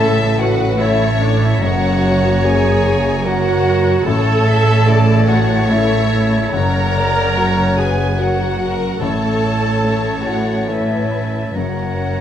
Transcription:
0.00 1.57 A1 medium
0.00 1.58 A1 medium
0.00 1.57 A2 medium
0.00 1.58 A2 medium
0.00 1.65 A2 medium
0.00 3.47 C#3 soft
0.00 0.75 A3 medium
0.00 1.58 A3 medium
0.00 0.76 C#4 medium
0.00 3.90 C#4 medium
0.00 0.76 E4 medium
0.00 0.38 A4 loud
0.00 1.19 A4 medium
0.00 0.49 C#5 medium
0.00 0.39 E5 medium
0.00 0.36 A5 medium
0.00 0.40 A5 medium
0.00 0.51 A5 medium
0.39 0.79 F#4 loud
0.39 0.80 B4 medium
0.39 0.82 F#5 medium
0.39 0.80 F#5 medium
0.39 4.29 C#6 medium
0.79 1.57 A3 medium
0.79 1.58 C#4 soft
0.79 1.20 E4 medium
0.79 1.58 E4 medium
0.79 1.58 C#5 medium
0.79 1.63 C#5 medium
0.79 1.65 E5 medium
0.79 1.22 E5 medium
0.79 1.21 E5 medium
0.79 1.63 A5 medium
1.20 1.40 D4 medium
1.20 1.65 A4 medium
1.20 1.41 D5 medium
1.42 1.62 E4 medium
1.42 1.61 E5 medium
1.42 1.62 E5 medium
1.61 4.02 F#1 medium
1.61 4.03 F#1 medium
1.61 4.09 F#2 medium
1.61 4.02 F#2 medium
1.61 4.03 F#2 medium
1.61 3.90 A#3 medium
1.61 2.43 F#4 loud
1.61 3.23 C#5 medium
1.61 2.15 F#5 medium
1.61 2.43 F#5 medium
1.61 3.25 A#5 medium
2.43 3.21 A#3 medium
2.43 3.22 C#4 medium
2.43 3.22 F#4 medium
2.43 3.26 G#4 loud
2.43 3.65 A#4 medium
2.43 3.25 G#5 medium
2.43 3.26 G#5 medium
3.23 4.02 A#3 medium
3.23 4.02 C#4 medium
3.23 4.06 F#4 loud
3.23 4.03 F#4 medium
3.23 4.07 A#4 medium
3.23 4.05 C#5 medium
3.23 4.05 F#5 medium
3.23 4.06 F#5 medium
3.23 4.10 F#5 medium
3.23 4.05 A#5 medium
3.66 4.10 A#4 medium
4.05 6.53 A1 medium
4.05 6.50 A1 medium
4.05 6.49 A2 medium
4.05 6.54 A2 medium
4.05 6.57 A2 medium
4.05 8.97 C#3 medium
4.05 6.50 A3 medium
4.05 5.28 A4 loud
4.05 8.86 C#5 medium
4.05 4.46 C#5 medium
4.05 6.54 A5 medium
4.05 5.25 A5 medium
4.05 5.29 A5 medium
4.48 4.88 E5 medium
4.87 5.66 C#3 soft
4.87 5.65 A3 medium
4.87 5.66 E4 medium
4.87 5.28 D5 medium
5.27 6.57 E4 medium
5.27 5.69 F#4 medium
5.27 6.54 C#5 medium
5.27 5.68 F#5 medium
5.27 5.71 F#5 medium
5.69 6.50 A3 medium
5.69 6.50 C#4 medium
5.69 6.54 E4 medium
5.69 6.51 E4 medium
5.69 6.53 E5 medium
5.69 6.52 E5 medium
5.69 6.57 E5 medium
6.52 8.97 F#1 medium
6.52 8.98 F#1 medium
6.52 9.04 F#2 medium
6.52 8.97 F#2 medium
6.52 8.98 F#3 medium
6.52 7.78 A#4 loud
6.52 6.95 C#5 medium
6.52 8.83 F#5 medium
6.52 7.80 A#5 medium
6.52 7.75 A#5 loud
6.95 10.85 C#3 soft
6.95 7.37 D5 medium
7.36 8.15 C#4 soft
7.36 8.15 F#4 medium
7.36 8.59 C#5 medium
7.36 7.78 C#5 medium
7.77 9.04 F#4 medium
7.77 8.19 G#4 medium
7.77 8.19 B4 medium
7.77 8.19 G#5 medium
7.77 8.18 G#5 medium
8.18 8.97 C#4 soft
8.18 8.99 F#4 medium
8.18 8.97 F#4 soft
8.18 8.59 A#4 medium
8.18 9.04 F#5 medium
8.18 9.01 F#5 medium
8.18 8.72 F#5 medium
8.60 9.00 A#4 medium
8.60 9.84 C#5 medium
9.00 11.52 A1 medium
9.00 11.59 A2 medium
9.00 11.52 A2 medium
9.00 11.57 A3 medium
9.00 12.21 C#4 medium
9.00 10.26 A4 medium
9.00 9.85 C#5 medium
9.00 10.66 C#5 medium
9.00 10.27 A5 medium
9.00 10.65 A5 medium
9.00 10.27 A5 medium
9.43 11.99 C#4 soft
9.84 10.65 A3 soft
9.84 10.65 C#4 soft
9.84 10.65 E4 soft
9.84 10.68 C#5 medium
10.26 11.60 E4 soft
10.26 10.69 F#4 medium
10.26 10.71 F#5 medium
10.26 10.69 F#5 medium
10.68 11.52 A3 soft
10.68 11.52 C#4 soft
10.68 11.56 E4 medium
10.68 11.52 E4 soft
10.68 11.57 B4 medium
10.68 11.54 C#5 medium
10.68 11.59 E5 soft
10.68 11.55 E5 medium
10.68 11.55 E5 soft
10.68 11.57 A5 medium
11.13 12.21 C#5 soft
11.55 12.21 F#1 soft
11.55 12.21 F#2 soft
11.55 12.21 F#2 medium
11.55 12.21 F#2 soft
11.55 12.21 A#3 soft
11.55 12.21 F#4 medium
11.55 12.21 A#4 soft
11.55 12.21 C#5 medium
11.55 12.21 F#5 medium
11.55 12.21 A#5 soft
12.00 12.21 C#4 soft

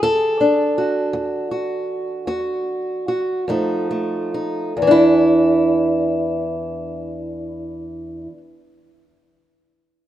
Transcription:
0.00 0.69 E2 medium
0.00 3.48 E3 medium
0.00 4.77 A4 medium
0.41 3.44 D4 soft
0.78 1.50 F#4 soft
1.13 1.81 E2 medium
1.51 2.26 F#4 soft
2.27 2.99 E2 medium
2.27 3.07 F#4 medium
3.08 3.44 F#4 soft
3.48 4.24 F2 medium
3.48 4.72 F3 soft
3.48 3.90 A3 soft
3.48 4.33 D#4 soft
3.91 4.77 A3 soft
4.34 4.72 D#4 soft
4.77 8.27 E2 medium
4.82 8.32 E3 medium
4.87 8.37 D4 medium
4.87 8.21 E4 medium

